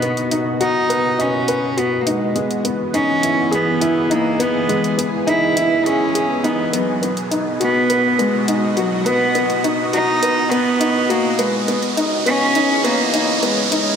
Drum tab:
HH |xxx-x-x-x-x-x-x-|xxx-x-x-x-x-x-x-|xxx-x-x-x-x-x-x-|xxx-x-x-x-x-x-x-|

HH |xxx-x-x-x-x-x-x-|xxx-x-x-x-x-x-x-|